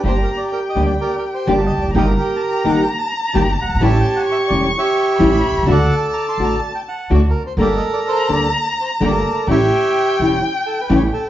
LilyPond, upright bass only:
\new Staff \with { instrumentName = "Upright bass" } { \clef bass \time 4/4 \key g \minor \tempo 4 = 127 g,,16. r4 r32 d,16. r4 r32 g,,16. r16 e,,32 f,,32 fis,,32 | g,,16. r4 r32 g,,16. r4 r32 g,,16. r16 fis,,32 g,,32 aes,,32 | a,,16. r4 r32 e,,16. r4 r32 a,,16. r16 b,,32 c,32 cis,32 | d,16. r4 r32 a,,16. r4 r32 d,16. r8 r32 |
g,,16. r4 r32 d,16. r4 r32 g,,16. r8 r32 | a,,16. r4 r32 e,,16. r4 r32 a,,16. r8 r32 | }